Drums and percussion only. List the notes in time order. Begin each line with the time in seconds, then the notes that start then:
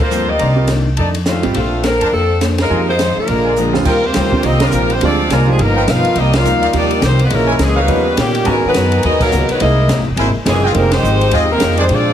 0.11 hi-hat pedal
0.39 ride
0.67 snare, hi-hat pedal, ride
0.97 ride
1.15 ride
1.25 snare, hi-hat pedal
1.43 ride
1.54 ride
1.84 snare, hi-hat pedal, ride
2.01 ride
2.41 snare, hi-hat pedal, ride
2.58 snare, ride
2.99 snare, hi-hat pedal, ride
3.28 ride
3.56 hi-hat pedal
3.74 snare
3.85 kick, crash
4.14 snare, hi-hat pedal, ride
4.32 kick
4.43 ride
4.60 snare, ride
4.72 hi-hat pedal
4.90 ride
5.01 ride
5.30 snare, hi-hat pedal, ride
5.59 ride
5.88 snare, hi-hat pedal, ride
6.05 ride
6.16 ride
6.33 snare, ride
6.45 hi-hat pedal
6.63 ride
6.73 ride
6.91 ride
7.02 snare, hi-hat pedal, ride
7.19 ride
7.30 ride
7.59 snare, hi-hat pedal, ride
7.88 ride
8.17 snare, hi-hat pedal, ride
8.35 ride
8.45 ride
8.74 snare, hi-hat pedal, ride
8.92 ride
9.03 ride
9.20 kick, crash
9.32 hi-hat pedal
9.49 ride
9.60 ride
9.89 snare, hi-hat pedal, ride
10.17 ride
10.46 snare, hi-hat pedal, ride
10.74 ride
10.91 snare, ride
11.04 hi-hat pedal
11.21 ride
11.31 ride
11.60 snare, hi-hat pedal, ride
11.77 ride
11.89 ride